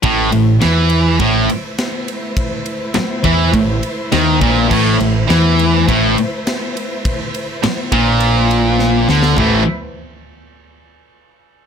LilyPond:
<<
  \new Staff \with { instrumentName = "String section" } { \time 4/4 \key a \minor \tempo 4 = 103 <a e' b' c''>1~ | <a e' b' c''>1~ | <a e' b' c''>1~ | <a e' b' c''>1 |
<a e' b' c''>8 r2. r8 | }
  \new Staff \with { instrumentName = "Distorted electric guitar" } { \clef bass \time 4/4 \key a \minor a,8 a,8 e4 a,8 r4. | r4. e8 a,8 r8 dis8 bes,8 | a,8 a,8 e4 a,8 r4. | r4. bes,2 d8 |
<a, e a>8 r2. r8 | }
  \new Staff \with { instrumentName = "Distorted electric guitar" } { \clef bass \time 4/4 \key a \minor a,8 a,8 e4 a,8 r4. | r4. e8 a,8 r8 dis8 bes,8 | a,8 a,8 e4 a,8 r4. | r4. bes,2 d8 |
<a, e a>8 r2. r8 | }
  \new Staff \with { instrumentName = "Distorted electric guitar" } { \clef bass \time 4/4 \key a \minor a,8 a,8 e4 a,8 r4. | r4. e8 a,8 r8 dis8 bes,8 | a,8 a,8 e4 a,8 r4. | r4. bes,2 d8 |
<a, e a>8 r2. r8 | }
  \new Staff \with { instrumentName = "Picked electric bass" } { \clef bass \time 4/4 \key a \minor a,,8 a,,8 e,4 a,,8 r4. | r4. e,8 a,,8 r8 dis,8 bes,,8 | a,,8 a,,8 e,4 a,,8 r4. | r4. bes,,2 d,8 |
a,,8 r2. r8 | }
  \new DrumStaff \with { instrumentName = "Drums" } \drummode { \time 4/4 <bd cymr>8 cymr8 <cymr sn>8 cymr8 <bd cymr>8 cymr8 <cymr sn>8 cymr8 | <bd cymr>8 cymr8 <cymr sn>8 <bd cymr>8 <bd cymr>8 cymr8 <cymr sn>8 <bd cymr>8 | <cymc bd>8 cymr8 <cymr sn>8 cymr8 <bd cymr>8 cymr8 <cymr sn>8 cymr8 | <bd cymr>8 cymr8 <cymr sn>8 <bd cymr>8 cymr8 cymr8 sn8 sn16 sn16 |
<bd tomfh>4 r4 r4 r4 | }
>>